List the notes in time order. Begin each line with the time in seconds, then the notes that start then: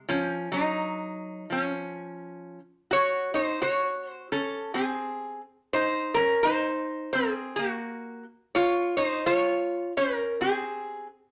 0.09 F3 C#4
0.52 F#3 D#4
1.50 F3 C#4
2.91 F#4 C#5
3.34 D#4 C5
3.61 F#4 C#5
4.08 C5
4.32 C#4 A4
4.74 C4 G#4
5.73 D#4 C5
6.14 C#4 A#4
6.43 D#4 C5
7.13 C4 G#4
7.56 A#3 F#4
8.55 F4 C#5
8.97 D#4 C5
9.26 F4 C#5
9.97 C#4 A#4
10.41 C4 G#4